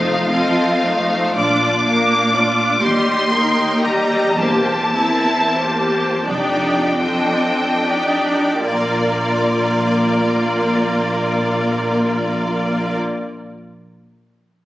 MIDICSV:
0, 0, Header, 1, 6, 480
1, 0, Start_track
1, 0, Key_signature, -2, "major"
1, 0, Tempo, 1043478
1, 628, Time_signature, 6, 3, 24, 8
1, 628, Tempo, 969305
1, 1588, Tempo, 1060071
1, 2068, Tempo, 1217039
1, 2548, Tempo, 1428571
1, 3028, Tempo, 1634877
1, 3508, Tempo, 1511335
1, 5416, End_track
2, 0, Start_track
2, 0, Title_t, "Violin section"
2, 0, Program_c, 0, 48
2, 0, Note_on_c, 0, 77, 58
2, 613, Note_off_c, 0, 77, 0
2, 630, Note_on_c, 0, 86, 68
2, 1330, Note_off_c, 0, 86, 0
2, 1345, Note_on_c, 0, 84, 65
2, 1821, Note_off_c, 0, 84, 0
2, 1823, Note_on_c, 0, 82, 52
2, 2065, Note_off_c, 0, 82, 0
2, 2066, Note_on_c, 0, 81, 66
2, 2776, Note_off_c, 0, 81, 0
2, 2779, Note_on_c, 0, 79, 48
2, 3510, Note_off_c, 0, 79, 0
2, 3511, Note_on_c, 0, 74, 37
2, 4881, Note_off_c, 0, 74, 0
2, 5416, End_track
3, 0, Start_track
3, 0, Title_t, "Violin section"
3, 0, Program_c, 1, 48
3, 0, Note_on_c, 1, 65, 34
3, 0, Note_on_c, 1, 72, 33
3, 128, Note_off_c, 1, 72, 0
3, 130, Note_off_c, 1, 65, 0
3, 146, Note_on_c, 1, 75, 35
3, 148, Note_on_c, 1, 69, 36
3, 386, Note_on_c, 1, 65, 34
3, 389, Note_on_c, 1, 72, 33
3, 390, Note_off_c, 1, 69, 0
3, 390, Note_off_c, 1, 75, 0
3, 627, Note_off_c, 1, 65, 0
3, 628, Note_off_c, 1, 72, 0
3, 629, Note_on_c, 1, 74, 40
3, 630, Note_off_c, 1, 74, 0
3, 630, Note_on_c, 1, 74, 41
3, 853, Note_off_c, 1, 74, 0
3, 874, Note_on_c, 1, 70, 35
3, 874, Note_on_c, 1, 77, 34
3, 1107, Note_off_c, 1, 70, 0
3, 1107, Note_off_c, 1, 77, 0
3, 1110, Note_on_c, 1, 74, 33
3, 1111, Note_off_c, 1, 74, 0
3, 1111, Note_on_c, 1, 74, 33
3, 1345, Note_on_c, 1, 75, 34
3, 1346, Note_off_c, 1, 74, 0
3, 1346, Note_on_c, 1, 67, 34
3, 1572, Note_off_c, 1, 75, 0
3, 1573, Note_off_c, 1, 67, 0
3, 1585, Note_on_c, 1, 70, 36
3, 1586, Note_on_c, 1, 79, 35
3, 1819, Note_off_c, 1, 70, 0
3, 1820, Note_off_c, 1, 79, 0
3, 1829, Note_on_c, 1, 67, 31
3, 1830, Note_on_c, 1, 75, 33
3, 2072, Note_off_c, 1, 67, 0
3, 2073, Note_off_c, 1, 75, 0
3, 2074, Note_on_c, 1, 72, 41
3, 2287, Note_off_c, 1, 72, 0
3, 2305, Note_on_c, 1, 76, 32
3, 2307, Note_on_c, 1, 70, 33
3, 2548, Note_on_c, 1, 72, 30
3, 2550, Note_off_c, 1, 76, 0
3, 2551, Note_off_c, 1, 70, 0
3, 2551, Note_off_c, 1, 72, 0
3, 2551, Note_on_c, 1, 72, 31
3, 2779, Note_off_c, 1, 72, 0
3, 2779, Note_on_c, 1, 67, 30
3, 2779, Note_on_c, 1, 74, 31
3, 3016, Note_off_c, 1, 67, 0
3, 3016, Note_off_c, 1, 74, 0
3, 3032, Note_on_c, 1, 69, 30
3, 3033, Note_on_c, 1, 75, 30
3, 3275, Note_off_c, 1, 69, 0
3, 3275, Note_off_c, 1, 75, 0
3, 3277, Note_on_c, 1, 67, 27
3, 3277, Note_on_c, 1, 74, 26
3, 3506, Note_off_c, 1, 74, 0
3, 3510, Note_on_c, 1, 74, 32
3, 3511, Note_off_c, 1, 67, 0
3, 3511, Note_on_c, 1, 70, 32
3, 4880, Note_off_c, 1, 74, 0
3, 4882, Note_off_c, 1, 70, 0
3, 5416, End_track
4, 0, Start_track
4, 0, Title_t, "Viola section"
4, 0, Program_c, 2, 48
4, 0, Note_on_c, 2, 57, 37
4, 0, Note_on_c, 2, 63, 37
4, 129, Note_off_c, 2, 57, 0
4, 129, Note_off_c, 2, 63, 0
4, 150, Note_on_c, 2, 65, 36
4, 151, Note_on_c, 2, 60, 36
4, 391, Note_off_c, 2, 65, 0
4, 392, Note_off_c, 2, 60, 0
4, 394, Note_on_c, 2, 63, 35
4, 395, Note_on_c, 2, 57, 35
4, 629, Note_on_c, 2, 65, 37
4, 630, Note_on_c, 2, 62, 39
4, 631, Note_off_c, 2, 57, 0
4, 631, Note_off_c, 2, 63, 0
4, 853, Note_off_c, 2, 62, 0
4, 853, Note_off_c, 2, 65, 0
4, 873, Note_on_c, 2, 58, 38
4, 874, Note_on_c, 2, 62, 37
4, 1102, Note_off_c, 2, 62, 0
4, 1107, Note_off_c, 2, 58, 0
4, 1108, Note_on_c, 2, 62, 38
4, 1109, Note_on_c, 2, 65, 38
4, 1345, Note_off_c, 2, 62, 0
4, 1345, Note_off_c, 2, 65, 0
4, 1347, Note_on_c, 2, 55, 37
4, 1347, Note_on_c, 2, 67, 37
4, 1573, Note_off_c, 2, 55, 0
4, 1573, Note_off_c, 2, 67, 0
4, 1591, Note_on_c, 2, 58, 36
4, 1591, Note_on_c, 2, 63, 37
4, 1822, Note_off_c, 2, 58, 0
4, 1822, Note_off_c, 2, 63, 0
4, 1826, Note_on_c, 2, 55, 36
4, 1826, Note_on_c, 2, 67, 35
4, 2068, Note_off_c, 2, 67, 0
4, 2071, Note_off_c, 2, 55, 0
4, 2072, Note_on_c, 2, 58, 37
4, 2072, Note_on_c, 2, 67, 39
4, 2286, Note_off_c, 2, 58, 0
4, 2286, Note_off_c, 2, 67, 0
4, 2304, Note_on_c, 2, 60, 36
4, 2304, Note_on_c, 2, 64, 33
4, 2550, Note_off_c, 2, 60, 0
4, 2550, Note_off_c, 2, 64, 0
4, 2552, Note_on_c, 2, 58, 33
4, 2553, Note_on_c, 2, 67, 34
4, 2778, Note_on_c, 2, 62, 33
4, 2778, Note_on_c, 2, 63, 33
4, 2779, Note_off_c, 2, 58, 0
4, 2780, Note_off_c, 2, 67, 0
4, 3016, Note_off_c, 2, 62, 0
4, 3016, Note_off_c, 2, 63, 0
4, 3031, Note_on_c, 2, 60, 29
4, 3031, Note_on_c, 2, 62, 29
4, 3273, Note_off_c, 2, 62, 0
4, 3274, Note_off_c, 2, 60, 0
4, 3275, Note_on_c, 2, 63, 26
4, 3276, Note_on_c, 2, 62, 26
4, 3510, Note_off_c, 2, 63, 0
4, 3510, Note_on_c, 2, 58, 30
4, 3511, Note_off_c, 2, 62, 0
4, 3511, Note_on_c, 2, 65, 30
4, 4880, Note_off_c, 2, 58, 0
4, 4881, Note_off_c, 2, 65, 0
4, 5416, End_track
5, 0, Start_track
5, 0, Title_t, "Cello section"
5, 0, Program_c, 3, 48
5, 0, Note_on_c, 3, 41, 40
5, 627, Note_off_c, 3, 41, 0
5, 629, Note_on_c, 3, 46, 45
5, 1329, Note_off_c, 3, 46, 0
5, 1342, Note_on_c, 3, 39, 44
5, 2068, Note_off_c, 3, 39, 0
5, 2069, Note_on_c, 3, 40, 39
5, 2765, Note_off_c, 3, 40, 0
5, 2777, Note_on_c, 3, 41, 34
5, 3410, Note_off_c, 3, 41, 0
5, 3507, Note_on_c, 3, 46, 31
5, 4877, Note_off_c, 3, 46, 0
5, 5416, End_track
6, 0, Start_track
6, 0, Title_t, "Double bass section"
6, 0, Program_c, 4, 48
6, 0, Note_on_c, 4, 29, 44
6, 373, Note_off_c, 4, 29, 0
6, 631, Note_on_c, 4, 34, 40
6, 1087, Note_off_c, 4, 34, 0
6, 1344, Note_on_c, 4, 39, 42
6, 1803, Note_off_c, 4, 39, 0
6, 2071, Note_on_c, 4, 28, 38
6, 2534, Note_off_c, 4, 28, 0
6, 2780, Note_on_c, 4, 29, 36
6, 3262, Note_off_c, 4, 29, 0
6, 3509, Note_on_c, 4, 34, 30
6, 4879, Note_off_c, 4, 34, 0
6, 5416, End_track
0, 0, End_of_file